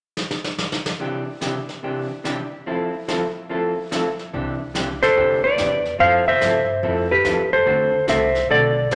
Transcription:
0.17 snare medium
0.31 snare medium
0.44 snare medium
0.58 snare medium
0.72 snare medium
0.86 snare medium
1.00 1.22 C3 medium
1.00 1.23 E3 medium
1.00 1.23 D4 medium
1.00 1.23 G4 medium
1.00 brush sweep soft
1.41 1.53 C3 medium
1.41 1.54 E3 medium
1.41 1.54 D4 medium
1.41 1.54 G4 medium
1.41 snare medium
1.41 hi-hat pedal medium
1.69 snare soft
1.83 2.06 C3 medium
1.83 2.06 E3 medium
1.83 2.06 D4 medium
1.83 2.06 G4 medium
1.83 brush sweep soft
2.24 2.37 C3 medium
2.24 2.37 E3 medium
2.24 2.37 D4 medium
2.24 2.37 G4 medium
2.24 snare medium
2.24 hi-hat pedal medium
2.66 2.89 F3 soft
2.66 2.89 C4 medium
2.66 2.90 E4 medium
2.66 2.90 A4 medium
2.66 brush sweep medium
3.08 3.20 F3 medium
3.08 3.21 C4 medium
3.08 3.21 E4 medium
3.08 3.21 A4 medium
3.08 snare medium
3.08 hi-hat pedal medium
3.49 3.72 F3 medium
3.49 3.73 C4 medium
3.49 3.73 E4 medium
3.49 3.73 A4 medium
3.49 brush sweep medium
3.91 4.04 F3 medium
3.91 4.04 C4 medium
3.91 4.04 E4 medium
3.91 4.04 A4 medium
3.91 snare medium
3.91 hi-hat pedal soft
4.19 snare soft
4.33 5.00 C2 medium
4.33 4.56 C3 medium
4.33 4.56 E3 medium
4.33 4.56 D4 medium
4.33 4.56 G4 medium
4.33 brush sweep medium
4.74 4.87 C3 medium
4.74 4.87 E3 medium
4.74 4.87 D4 medium
4.74 4.87 G4 medium
4.74 snare medium
4.74 hi-hat pedal medium
5.02 5.42 A4 medium
5.02 5.45 C5 loud
5.02 snare soft
5.16 5.52 D2 medium
5.16 5.39 C3 medium
5.16 5.39 E3 medium
5.16 5.39 D4 medium
5.16 5.39 G4 medium
5.16 brush sweep soft
5.44 5.97 B4 medium
5.44 6.00 D5 medium
5.58 5.94 E2 medium
5.58 5.70 C3 medium
5.58 5.70 E3 medium
5.58 5.71 D4 medium
5.58 5.71 G4 medium
5.58 snare medium
5.58 hi-hat pedal medium
5.85 snare soft
5.98 6.33 F2 medium
5.98 6.22 F3 medium
5.98 6.22 C4 medium
5.98 6.22 E4 medium
5.98 6.22 A4 medium
5.98 6.26 C5 medium
5.98 6.27 F5 loud
5.98 brush sweep soft
6.28 7.07 C5 medium
6.28 7.07 E5 loud
6.41 6.77 G2 medium
6.41 6.53 F3 medium
6.41 6.53 C4 medium
6.41 6.54 E4 medium
6.41 6.54 A4 medium
6.41 snare medium
6.41 hi-hat pedal medium
6.83 7.19 F2 medium
6.83 7.06 F3 medium
6.83 7.06 C4 medium
6.83 7.06 E4 medium
6.83 7.06 A4 medium
6.83 brush sweep soft
7.11 7.50 G4 medium
7.11 7.53 B4 medium
7.24 7.60 E2 medium
7.24 7.37 F3 medium
7.24 7.37 C4 medium
7.24 7.37 E4 medium
7.24 7.37 A4 medium
7.24 snare medium
7.24 hi-hat pedal medium
7.53 8.05 A4 medium
7.53 8.08 C5 medium
7.66 8.00 D2 medium
7.66 7.88 D3 medium
7.66 7.89 A3 medium
7.66 7.89 C4 medium
7.66 7.89 F#4 medium
7.66 7.89 A4 medium
7.66 brush sweep medium
8.07 8.44 C2 medium
8.07 8.19 D3 medium
8.07 8.20 A3 medium
8.07 8.20 C4 medium
8.07 8.20 F#4 medium
8.07 8.20 A4 medium
8.07 8.48 C5 medium
8.07 8.51 E5 medium
8.07 snare medium
8.07 hi-hat pedal medium
8.35 snare soft
8.49 8.86 B1 medium
8.49 8.72 D3 medium
8.49 8.72 A3 medium
8.49 8.72 C4 medium
8.49 8.73 F#4 medium
8.49 8.89 A4 medium
8.49 8.73 A4 medium
8.49 8.93 D5 loud
8.49 brush sweep soft
8.91 8.95 A1 medium
8.91 8.95 D3 medium
8.91 8.95 A3 medium
8.91 8.95 C4 medium
8.91 snare medium
8.91 hi-hat pedal medium

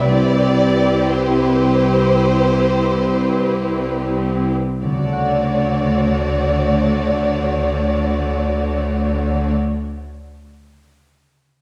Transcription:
0.00 4.52 C2 soft
0.00 3.77 C3 soft
0.00 3.82 C4 soft
0.00 3.86 E4 soft
0.00 4.51 G4 soft
0.00 1.08 D5 medium
0.00 3.91 B5 soft
0.04 4.52 C4 soft
0.04 4.52 E4 soft
0.04 4.56 B4 soft
1.11 4.15 C5 medium
4.82 9.55 D2 soft
4.82 9.55 D3 soft
4.82 9.56 D3 soft
4.82 9.55 A3 soft
4.82 9.54 F#4 soft
4.82 9.55 C#5 soft
4.82 9.54 D5 soft
4.91 9.63 C#3 soft
4.98 9.70 F#4 soft
5.05 9.77 A4 soft
5.12 9.84 F#5 soft

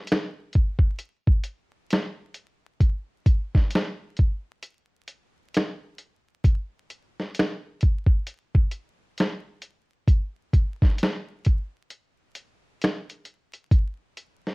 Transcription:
0.07 closed hi-hat medium
0.12 finger snap medium
0.12 snare loud
0.53 kick medium
0.53 closed hi-hat medium
0.79 kick medium
0.99 closed hi-hat medium
1.27 kick medium
1.44 closed hi-hat medium
1.90 finger snap medium
1.90 snare medium
1.90 closed hi-hat medium
2.34 closed hi-hat medium
2.80 kick medium
2.80 closed hi-hat medium
3.26 kick medium
3.26 closed hi-hat medium
3.55 kick loud
3.55 snare soft
3.71 closed hi-hat medium
3.75 finger snap medium
3.75 snare loud
4.17 kick medium
4.17 closed hi-hat medium
4.63 closed hi-hat medium
5.08 closed hi-hat medium
5.54 finger snap medium
5.54 snare medium
5.54 closed hi-hat medium
5.98 closed hi-hat medium
6.44 kick loud
6.44 closed hi-hat medium
6.90 closed hi-hat medium
7.20 snare soft
7.35 closed hi-hat medium
7.39 finger snap medium
7.39 snare loud
7.81 kick medium
7.81 closed hi-hat medium
8.06 kick medium
8.27 closed hi-hat medium
8.55 kick medium
8.71 closed hi-hat medium
9.18 finger snap medium
9.18 snare medium
9.18 closed hi-hat medium
9.62 closed hi-hat medium
10.08 kick loud
10.08 closed hi-hat medium
10.53 kick medium
10.53 closed hi-hat medium
10.82 kick medium
10.82 snare soft
10.98 closed hi-hat medium
11.03 finger snap medium
11.03 snare loud
11.45 kick medium
11.45 closed hi-hat medium
11.90 closed hi-hat medium
12.35 closed hi-hat medium
12.82 finger snap medium
12.82 snare medium
12.82 closed hi-hat medium
13.10 closed hi-hat soft
13.25 closed hi-hat medium
13.53 closed hi-hat soft
13.71 kick loud
13.71 closed hi-hat medium
14.17 closed hi-hat medium
14.47 snare soft

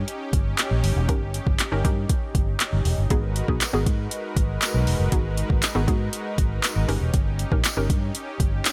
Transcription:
0.00 0.25 C#4 medium
0.00 3.07 C#4 medium
0.00 0.25 D#4 medium
0.00 8.72 D#4 medium
0.00 0.25 G4 medium
0.00 3.07 G4 loud
0.00 0.25 A#4 loud
0.08 closed hi-hat medium
0.33 0.53 G1 loud
0.33 kick loud
0.33 closed hi-hat medium
0.58 clap loud
0.58 closed hi-hat medium
0.71 0.81 A#1 medium
0.84 0.93 G1 loud
0.84 open hi-hat medium
0.96 1.09 E1 loud
1.09 1.38 G1 loud
1.09 1.43 C#4 medium
1.09 1.43 D#4 medium
1.09 1.43 G4 medium
1.09 1.43 A#4 loud
1.09 kick loud
1.09 closed hi-hat medium
1.34 closed hi-hat medium
1.47 1.56 G1 loud
1.47 kick loud
1.59 clap loud
1.59 closed hi-hat medium
1.72 1.82 G1 medium
1.72 1.79 C#4 medium
1.72 1.79 D#4 medium
1.72 1.79 G4 medium
1.72 1.79 A#4 loud
1.84 2.04 G2 loud
1.84 2.39 C#4 medium
1.84 2.39 D#4 medium
1.84 2.39 G4 medium
1.84 2.39 A#4 loud
1.84 kick medium
1.84 closed hi-hat medium
2.09 kick loud
2.09 closed hi-hat medium
2.35 2.54 G1 loud
2.35 kick loud
2.35 closed hi-hat medium
2.60 clap loud
2.60 closed hi-hat loud
2.73 2.83 G1 medium
2.85 2.95 E1 medium
2.85 open hi-hat medium
2.98 3.08 G1 medium
3.10 3.40 G#1 loud
3.10 6.85 G#3 medium
3.10 3.31 B3 medium
3.10 3.31 D#4 medium
3.10 6.85 F#4 medium
3.10 3.31 F#4 medium
3.10 3.31 G#4 loud
3.10 6.85 A#4 medium
3.10 6.85 B4 loud
3.10 kick loud
3.10 closed hi-hat medium
3.36 closed hi-hat medium
3.48 3.58 B1 medium
3.48 3.62 B3 medium
3.48 3.62 D#4 medium
3.48 3.62 F#4 medium
3.48 3.62 G#4 loud
3.48 kick medium
3.61 clap loud
3.61 closed hi-hat medium
3.61 tambourine medium
3.73 3.83 G#1 loud
3.73 4.28 B3 loud
3.73 4.28 D#4 medium
3.73 4.28 F#4 medium
3.73 4.29 G#4 loud
3.86 4.06 G#2 loud
3.86 kick medium
3.86 closed hi-hat medium
4.11 closed hi-hat medium
4.36 4.56 G#1 loud
4.36 kick loud
4.36 closed hi-hat medium
4.62 clap loud
4.62 closed hi-hat medium
4.62 tambourine medium
4.74 4.84 B1 medium
4.87 4.97 E1 medium
4.87 open hi-hat medium
5.00 5.09 F#1 medium
5.12 5.46 B3 medium
5.12 5.47 D#4 medium
5.12 5.47 F#4 medium
5.12 5.47 G#4 loud
5.12 kick loud
5.12 closed hi-hat medium
5.37 closed hi-hat medium
5.50 5.60 G#1 medium
5.50 kick loud
5.62 clap loud
5.62 closed hi-hat loud
5.62 tambourine medium
5.75 5.85 G#1 medium
5.75 5.82 B3 medium
5.75 5.82 D#4 medium
5.75 5.82 F#4 medium
5.75 5.82 G#4 loud
5.88 6.08 G#2 loud
5.88 6.43 B3 medium
5.88 6.43 D#4 medium
5.88 6.43 F#4 medium
5.88 6.43 G#4 loud
5.88 kick medium
5.88 closed hi-hat medium
6.13 closed hi-hat medium
6.38 6.58 G#1 loud
6.38 kick loud
6.38 closed hi-hat medium
6.63 clap loud
6.63 closed hi-hat loud
6.63 tambourine medium
6.76 6.86 G#1 medium
6.88 6.98 G1 loud
6.88 7.39 C#4 medium
6.88 8.72 C#4 medium
6.88 7.39 D#4 medium
6.88 7.39 G4 medium
6.88 8.72 G4 loud
6.88 7.39 A#4 loud
6.88 open hi-hat medium
7.01 7.11 E1 medium
7.14 7.43 G1 loud
7.14 kick loud
7.14 closed hi-hat medium
7.39 closed hi-hat medium
7.52 7.61 A#1 medium
7.52 7.65 C#4 medium
7.52 7.65 D#4 medium
7.52 7.66 G4 medium
7.52 7.66 A#4 medium
7.52 kick loud
7.64 clap loud
7.64 closed hi-hat medium
7.64 tambourine medium
7.77 7.87 G1 loud
7.77 8.32 C#4 medium
7.77 8.32 D#4 medium
7.77 8.32 G4 medium
7.77 8.32 A#4 loud
7.90 8.09 G2 loud
7.90 kick medium
7.90 closed hi-hat medium
8.15 closed hi-hat medium
8.40 8.60 G1 loud
8.40 kick loud
8.40 closed hi-hat medium
8.65 clap loud
8.65 closed hi-hat loud
8.65 tambourine medium

